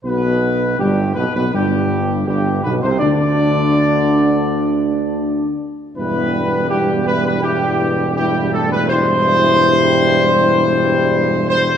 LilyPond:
<<
  \new Staff \with { instrumentName = "Trumpet section" } { \time 4/4 \key g \major \tempo 4 = 81 b'4 g'8 b'16 b'16 g'4 g'8 b'16 c''16 | d''2.~ d''8 r8 | b'4 g'8 b'16 b'16 g'4 g'8 a'16 b'16 | c''2.~ c''8 c''8 | }
  \new Staff \with { instrumentName = "French horn section" } { \time 4/4 \key g \major << { b4 g8 b16 b16 g4 g8 b16 c'16 | d'2.~ d'8 r8 | e'4 e'4 e'4 e'4 | e'1 | } \\ { r1 | r1 | b4 b4 b4 b8 a8 | g1 | } >> }
  \new Staff \with { instrumentName = "Trombone section" } { \clef bass \time 4/4 \key g \major b,4 g,8 b,16 b,16 g,4 g,8 b,16 c16 | d2.~ d8 r8 | <g, g>4 <g, g>4 <g, g>4 <g, g>4 | <g, g>1 | }
  \new Staff \with { instrumentName = "Tuba" } { \clef bass \time 4/4 \key g \major b,,4 g,,8 b,,16 b,,16 g,,4 g,,8 b,,16 c,16 | d,2.~ d,8 r8 | e,,1~ | e,,1 | }
>>